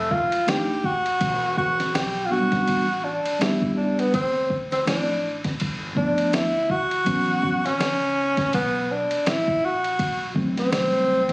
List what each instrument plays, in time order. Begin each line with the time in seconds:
Already playing: upright bass F1, tenor saxophone A3
0.11 tenor saxophone F4, kick
0.32 muted upright bass stroke, ride
0.47 upright bass F1, tine electric piano A3 D4 D#4 G4, tenor saxophone G4, snare, hi-hat pedal, ride
0.84 tenor saxophone F#4, kick
1.06 ride
1.21 upright bass E1, kick, ride
1.57 tenor saxophone F#4, kick
1.80 snare, ride
1.94 upright bass B1, tenor saxophone G4, snare, hi-hat pedal, ride
2.25 tine electric piano F#3, tenor saxophone F4
2.30 tine electric piano B3 D4 F#4, tenor saxophone F#4
2.36 tine electric piano G3
2.52 kick, snare, ride
2.68 upright bass A1, kick, ride
3.04 tenor saxophone D4
3.25 muted upright bass stroke, ride
3.39 upright bass C#2, tine electric piano G3 B3 D4 G4, tenor saxophone E4, snare, hi-hat pedal, ride
3.62 kick
3.74 tenor saxophone D4 E4
3.99 tenor saxophone B3, ride
4.14 upright bass D2, tenor saxophone C4, kick, ride
4.50 kick
4.72 tenor saxophone C4, snare, ride
4.85 upright bass A1, tine electric piano F3 A3 C4 E4, tenor saxophone D4, snare, hi-hat pedal, ride
5.44 muted upright bass stroke, kick, snare, ride
5.60 upright bass G1, kick, ride
5.95 tine electric piano F3 A3 B3 D4, tenor saxophone D4, kick
6.18 muted upright bass stroke, ride
6.33 upright bass D2, tenor saxophone E4, snare, hi-hat pedal, ride
6.70 tenor saxophone F#4, kick
6.91 ride
7.05 upright bass A1, tine electric piano E3 F#3 B3 C#4, kick, ride
7.43 kick
7.66 tenor saxophone C#4, snare, ride
7.80 upright bass C#2, snare, hi-hat pedal, ride
8.37 muted upright bass stroke, kick, snare, ride
8.53 upright bass B1, tenor saxophone B3, kick, ride
8.92 tenor saxophone D4
9.11 muted upright bass stroke, ride
9.26 upright bass A1, tenor saxophone E4, snare, hi-hat pedal, ride
9.48 kick
9.65 tenor saxophone F#4
9.84 ride
9.99 upright bass B1, kick, ride
10.34 tine electric piano D#3 F#3 A3 C4, kick
10.57 tenor saxophone C4, snare, ride
10.72 upright bass C2, snare, hi-hat pedal, ride
11.29 ride